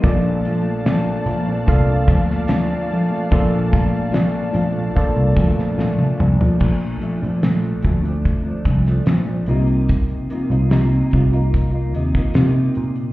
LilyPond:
<<
  \new Staff \with { instrumentName = "String section" } { \time 4/4 \key bes \major \tempo 4 = 73 <d'' f'' a''>1~ | <d'' f'' a''>1 | r1 | r1 | }
  \new Staff \with { instrumentName = "Tine electric piano" } { \time 4/4 \key bes \major <bes d' f' a' d''>4. r8 <bes d' f' a' f''>4. r8 | <bes d' f' a' d''>4. r8 <bes d' f' a' d''>4. r8 | r1 | r1 | }
  \new Staff \with { instrumentName = "Steel-string acoustic guitar" } { \time 4/4 \key bes \major <bes, f a d'>8 <bes, f a d'>8 <bes, f a d'>8 <bes, f a d'>16 <f a d'>8. <bes, f a d'>8 <bes, f a d'>8 <bes, f a d'>16 <f a d'>16 | <bes, f a d'>8 <bes, f a d'>8 <bes, f a d'>8 <bes, f a d'>16 <f a d'>8. <bes, f a d'>8 <bes, f a d'>8 <bes, f a d'>16 <f a d'>16 | <bes, f a d'>8 <bes, f a d'>16 <f a d'>16 <bes, f a d'>8 <bes, f a d'>16 <f a d'>8 <f a d'>16 <bes, f a d'>16 <f a d'>16 <bes, f a d'>16 <f a d'>16 <c bes ees' f'>8~ | <c bes ees' f'>8 <c bes ees' f'>16 <bes ees' f'>16 <c bes ees' f'>8 <c bes ees' f'>16 <bes ees' f'>8 <bes ees' f'>16 <c bes ees' f'>16 <bes ees' f'>16 <c bes ees' f'>4 | }
  \new Staff \with { instrumentName = "Picked electric bass" } { \clef bass \time 4/4 \key bes \major bes,,4~ bes,,16 r16 bes,,8 c,8 d,4 r8 | bes,,4~ bes,,16 r16 bes,,8 r16 c,16 d,16 bes,,16 a,,16 r16 c,16 bes,,16 | bes,,8 r16 bes,,8. d,4 c,8 bes,,8 c,8~ | c,8 r16 c,8. c,4 ees,8 c8 bes,8 | }
  \new DrumStaff \with { instrumentName = "Drums" } \drummode { \time 4/4 <hh bd>8 hh8 <hh sn>8 hh8 <hh bd>8 <hh bd>16 sn16 <hh sn>8 hho8 | <hh bd>8 <hh bd>8 <hh sn>8 hh8 <hh bd>8 <hh bd>16 sn16 sn16 tommh16 toml16 tomfh16 | <cymc bd>16 hh16 hh16 hh16 <hh sn>16 hh16 <hh bd>16 hh16 <hh bd>8 <hh bd>16 <hh sn>16 <hh sn>16 hh16 hh16 hh16 | <hh bd>16 hh16 hh16 hh16 <hh sn>16 hh16 <hh bd>16 hh16 <hh bd>8 hh16 <hh bd>16 <hh sn>16 hh16 hh16 hh16 | }
>>